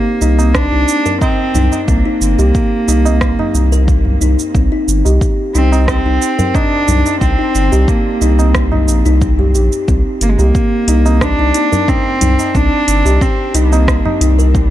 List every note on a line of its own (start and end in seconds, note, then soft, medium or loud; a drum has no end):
0.00 0.56 A#3 medium
0.21 0.67 C2 medium
0.21 0.31 D#4 medium
0.21 tabla na soft
0.21 tabla tin soft
0.21 shaker medium
0.39 0.71 C4 medium
0.39 tabla na medium
0.39 tabla tin soft
0.39 shaker soft
0.55 1.20 D4 loud
0.55 kick medium
0.55 cross-stick medium
0.55 shaker soft
0.72 0.85 C2 medium
0.72 0.87 D#4 medium
0.88 shaker medium
1.06 1.15 A#4 medium
1.06 tabla ge medium
1.06 shaker soft
1.21 1.84 C4 medium
1.21 kick medium
1.21 tabla na medium
1.21 shaker soft
1.38 tabla tin soft
1.55 1.69 C2 loud
1.55 1.65 D#4 medium
1.55 tabla ge medium
1.55 shaker medium
1.72 tabla na soft
1.72 shaker soft
1.87 2.03 C2 loud
1.87 4.17 A#3 medium
1.87 2.04 C4 medium
1.87 kick loud
1.87 shaker soft
2.05 2.21 D#4 medium
2.21 2.36 G1 medium
2.21 shaker medium
2.39 2.52 C2 medium
2.39 2.48 G4 medium
2.39 tabla tin medium
2.39 shaker soft
2.55 kick loud
2.55 shaker soft
2.88 3.34 C2 medium
2.88 2.98 D#4 medium
2.88 tabla na soft
2.88 tabla tin soft
2.88 shaker medium
3.05 3.37 C4 medium
3.05 tabla na medium
3.05 tabla tin medium
3.05 shaker soft
3.21 kick loud
3.21 cross-stick medium
3.21 shaker soft
3.39 3.54 D#4 medium
3.39 tabla na medium
3.39 tabla ge medium
3.54 4.17 C2 medium
3.54 tabla na soft
3.54 shaker medium
3.72 3.81 A#4 medium
3.72 shaker soft
3.88 kick loud
3.88 shaker soft
4.05 tabla ge medium
4.21 4.36 C2 medium
4.21 4.31 D#4 medium
4.21 shaker medium
4.39 shaker soft
4.55 4.69 C2 loud
4.55 4.70 C4 medium
4.55 kick loud
4.55 shaker soft
4.72 4.87 D#4 medium
4.88 5.02 G1 loud
4.88 shaker medium
5.05 5.19 C2 medium
5.05 5.15 G4 medium
5.05 tabla tin medium
5.05 shaker soft
5.21 kick loud
5.21 shaker soft
5.54 6.01 C2 medium
5.54 5.86 C4 medium
5.54 5.65 D#4 medium
5.54 tabla na soft
5.54 tabla tin soft
5.54 shaker medium
5.72 6.04 C4 medium
5.72 tabla na medium
5.72 tabla tin medium
5.72 shaker soft
5.88 6.56 C4 loud
5.88 kick medium
5.88 cross-stick medium
5.88 shaker soft
6.06 6.19 C2 medium
6.06 6.21 D#4 medium
6.22 shaker medium
6.39 6.48 A#4 medium
6.39 tabla ge medium
6.39 shaker soft
6.54 7.19 D4 loud
6.54 kick loud
6.54 tabla na medium
6.54 shaker soft
6.73 tabla tin soft
6.88 7.03 C2 loud
6.88 6.98 D#4 medium
6.88 tabla ge medium
6.88 shaker medium
7.06 tabla na soft
7.06 shaker soft
7.20 7.36 C2 medium
7.20 7.89 C4 loud
7.20 7.37 C4 medium
7.20 kick loud
7.20 shaker soft
7.39 7.54 D#4 medium
7.55 7.69 G1 loud
7.55 shaker medium
7.72 7.85 C2 medium
7.72 7.81 G4 medium
7.72 tabla tin medium
7.72 shaker soft
7.88 8.88 A#3 medium
7.88 kick loud
7.88 shaker soft
8.21 8.90 C2 medium
8.21 8.31 D#4 medium
8.21 tabla na soft
8.21 tabla tin soft
8.21 shaker medium
8.39 8.71 C4 medium
8.39 tabla na medium
8.39 tabla tin soft
8.39 shaker soft
8.55 kick loud
8.55 cross-stick medium
8.55 shaker soft
8.72 8.87 D#4 medium
8.72 tabla na medium
8.72 tabla ge medium
8.88 9.03 A#1 medium
8.88 tabla na soft
8.88 shaker medium
9.06 9.56 C2 loud
9.06 9.15 D#4 medium
9.06 shaker soft
9.21 kick loud
9.21 shaker soft
9.39 9.53 G4 medium
9.39 tabla ge medium
9.55 9.69 A#1 medium
9.55 9.70 G4 medium
9.55 shaker medium
9.72 shaker soft
9.88 10.03 C2 medium
9.88 10.37 C4 medium
9.88 kick loud
9.88 shaker soft
10.21 10.36 G1 loud
10.21 10.30 A#3 medium
10.21 closed hi-hat medium
10.21 shaker medium
10.29 10.38 G#3 medium
10.37 10.52 C2 medium
10.37 11.23 A#3 medium
10.37 10.48 G4 medium
10.37 tabla tin medium
10.37 shaker soft
10.55 kick loud
10.55 shaker soft
10.88 11.34 C2 medium
10.88 10.98 D#4 medium
10.88 closed hi-hat medium
10.88 tabla na soft
10.88 tabla tin soft
10.88 shaker medium
11.05 11.37 C4 medium
11.05 tabla na medium
11.05 tabla tin medium
11.05 shaker soft
11.21 11.90 D4 loud
11.21 kick medium
11.21 cross-stick medium
11.21 shaker soft
11.39 11.52 C2 medium
11.39 11.54 D#4 medium
11.54 11.71 D#4 medium
11.54 closed hi-hat medium
11.54 shaker medium
11.72 11.81 A#4 medium
11.72 tabla ge medium
11.72 shaker soft
11.88 12.57 C4 loud
11.88 kick medium
11.88 tabla na soft
11.88 shaker soft
12.07 tabla tin soft
12.21 12.36 C2 loud
12.21 12.31 D#4 medium
12.21 closed hi-hat medium
12.21 tabla ge medium
12.21 shaker medium
12.39 tabla na soft
12.39 shaker soft
12.55 12.69 C2 loud
12.55 13.04 C4 medium
12.55 13.23 D4 loud
12.55 kick medium
12.55 shaker soft
12.88 13.02 G1 loud
12.88 closed hi-hat medium
12.88 shaker medium
13.05 13.19 C2 medium
13.05 13.15 G4 medium
13.05 tabla tin medium
13.05 shaker soft
13.21 13.57 C4 medium
13.21 kick medium
13.21 shaker soft
13.54 14.01 C2 medium
13.54 14.22 A#3 medium
13.54 13.65 D#4 medium
13.54 closed hi-hat medium
13.54 tabla na soft
13.54 tabla tin soft
13.54 shaker medium
13.72 14.04 C4 medium
13.72 tabla na medium
13.72 tabla tin medium
13.72 shaker soft
13.88 kick medium
13.88 cross-stick medium
13.88 shaker soft
14.05 14.20 D#4 medium
14.05 tabla na medium
14.05 tabla ge medium
14.21 14.70 C2 loud
14.21 14.38 D#4 medium
14.21 closed hi-hat medium
14.21 tabla na soft
14.21 shaker medium
14.39 14.48 A#4 medium
14.39 shaker soft
14.55 kick loud
14.55 shaker soft